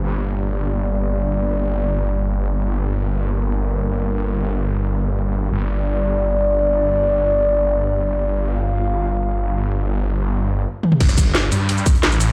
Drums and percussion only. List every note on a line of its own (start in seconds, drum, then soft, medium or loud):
10.83 high tom medium
10.92 mid tom medium
11.00 kick loud
11.00 closed hi-hat medium
11.00 crash loud
11.09 cross-stick soft
11.09 closed hi-hat soft
11.09 shaker soft
11.18 kick medium
11.18 closed hi-hat medium
11.18 shaker medium
11.34 snare loud
11.34 closed hi-hat loud
11.34 closed hi-hat medium
11.43 cross-stick soft
11.52 closed hi-hat medium
11.52 shaker medium
11.69 closed hi-hat medium
11.69 closed hi-hat loud
11.78 shaker soft
11.86 kick loud
11.86 closed hi-hat medium
11.86 shaker medium
11.95 closed hi-hat soft
12.03 snare loud
12.03 closed hi-hat loud
12.03 closed hi-hat medium
12.12 shaker soft
12.20 closed hi-hat medium
12.20 open hi-hat medium
12.20 shaker medium